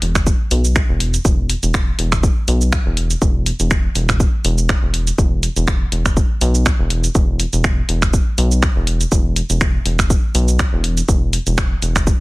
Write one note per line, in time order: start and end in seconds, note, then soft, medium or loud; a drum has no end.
0.02 0.32 E1 medium
0.02 open hi-hat medium
0.15 finger snap medium
0.15 kick medium
0.15 cabasa soft
0.27 kick loud
0.27 cabasa medium
0.51 0.81 B1 loud
0.51 open hi-hat loud
0.51 cabasa soft
0.65 cabasa soft
0.76 finger snap medium
0.76 kick loud
0.76 cabasa medium
0.89 1.18 E1 loud
1.00 open hi-hat loud
1.14 open hi-hat soft
1.14 cabasa soft
1.25 1.55 E1 loud
1.25 kick loud
1.25 cabasa medium
1.50 open hi-hat loud
1.50 cabasa soft
1.63 1.92 E1 medium
1.63 open hi-hat soft
1.63 cabasa soft
1.74 finger snap medium
1.74 kick loud
1.74 cabasa soft
1.99 2.28 E1 medium
1.99 open hi-hat loud
2.12 finger snap medium
2.12 kick medium
2.12 cabasa soft
2.23 kick loud
2.23 cabasa medium
2.48 2.78 B1 loud
2.48 open hi-hat loud
2.48 cabasa soft
2.61 cabasa soft
2.73 finger snap medium
2.73 kick loud
2.73 cabasa medium
2.86 3.15 E1 loud
2.97 open hi-hat loud
3.11 open hi-hat soft
3.11 cabasa soft
3.22 3.51 E1 loud
3.22 kick loud
3.22 cabasa medium
3.46 open hi-hat loud
3.46 cabasa soft
3.60 3.88 E1 medium
3.60 open hi-hat soft
3.60 cabasa soft
3.71 finger snap medium
3.71 kick loud
3.71 cabasa soft
3.95 4.25 E1 medium
3.95 open hi-hat loud
3.95 cabasa soft
4.09 finger snap medium
4.09 kick medium
4.09 cabasa soft
4.20 kick loud
4.20 cabasa soft
4.45 4.74 E1 loud
4.45 open hi-hat loud
4.45 cabasa soft
4.58 cabasa soft
4.69 finger snap medium
4.69 kick loud
4.69 cabasa soft
4.83 5.11 E1 medium
4.94 open hi-hat medium
5.07 open hi-hat soft
5.07 cabasa soft
5.18 5.48 E1 loud
5.18 kick loud
5.18 cabasa medium
5.43 open hi-hat medium
5.43 cabasa soft
5.56 5.85 E1 medium
5.56 open hi-hat soft
5.56 cabasa soft
5.68 finger snap medium
5.68 kick loud
5.68 cabasa soft
5.92 6.22 E1 medium
5.92 open hi-hat medium
6.06 finger snap medium
6.06 kick medium
6.06 cabasa soft
6.17 kick loud
6.17 cabasa medium
6.41 6.71 B1 loud
6.41 open hi-hat medium
6.41 cabasa soft
6.55 cabasa soft
6.66 finger snap medium
6.66 kick loud
6.66 cabasa soft
6.79 7.08 E1 loud
6.90 open hi-hat medium
7.04 open hi-hat soft
7.04 cabasa soft
7.15 7.45 E1 loud
7.15 kick loud
7.15 cabasa medium
7.40 open hi-hat medium
7.40 cabasa soft
7.53 7.82 E1 medium
7.53 open hi-hat soft
7.53 cabasa soft
7.64 finger snap medium
7.64 kick loud
7.64 cabasa medium
7.89 8.19 E1 medium
7.89 open hi-hat medium
8.02 finger snap medium
8.02 kick medium
8.02 cabasa soft
8.13 kick loud
8.13 cabasa medium
8.38 8.68 B1 loud
8.38 open hi-hat medium
8.38 cabasa soft
8.51 cabasa soft
8.63 finger snap medium
8.63 kick loud
8.63 cabasa medium
8.76 9.05 E1 loud
8.87 open hi-hat medium
9.01 open hi-hat soft
9.01 cabasa soft
9.12 9.41 E1 loud
9.12 kick loud
9.12 cabasa medium
9.36 open hi-hat medium
9.36 cabasa soft
9.50 9.79 E1 medium
9.50 open hi-hat soft
9.50 cabasa soft
9.61 finger snap medium
9.61 kick loud
9.61 cabasa medium
9.86 10.15 E1 medium
9.86 open hi-hat medium
9.99 finger snap medium
9.99 kick medium
9.99 cabasa soft
10.10 kick loud
10.10 cabasa medium
10.35 10.64 B1 loud
10.35 open hi-hat medium
10.35 cabasa soft
10.48 cabasa soft
10.59 finger snap medium
10.59 kick loud
10.59 cabasa medium
10.73 11.02 E1 loud
10.84 open hi-hat medium
10.97 open hi-hat soft
10.97 cabasa soft
11.09 11.38 E1 loud
11.09 kick loud
11.09 cabasa medium
11.33 open hi-hat medium
11.33 cabasa soft
11.47 11.75 E1 medium
11.47 open hi-hat soft
11.47 cabasa soft
11.58 finger snap medium
11.58 kick loud
11.58 cabasa medium
11.82 12.12 E1 medium
11.82 open hi-hat medium
11.82 cabasa soft
11.96 finger snap medium
11.96 kick medium
11.96 cabasa soft
12.07 kick loud
12.07 cabasa medium